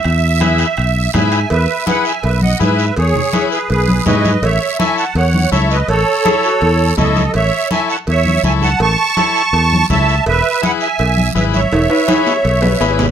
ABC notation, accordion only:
X:1
M:4/4
L:1/8
Q:1/4=165
K:E
V:1 name="Accordion"
e6 [eg]2 | [Be]2 [Bf] [eg] [Be] [df] [Be]2 | [Gc]3 [GB] [GB]2 [Bd]2 | [ce]2 [eg] [fa] [cf]2 [ce] [Bd] |
[Ac]6 [Ad]2 | [ce]2 [eg] [fa] [ce]2 [eg] [fa] | [ac']6 [ea]2 | [Be]2 [Bf] [eg]3 [Be] [ce]- |
[ce]6- [ce] z |]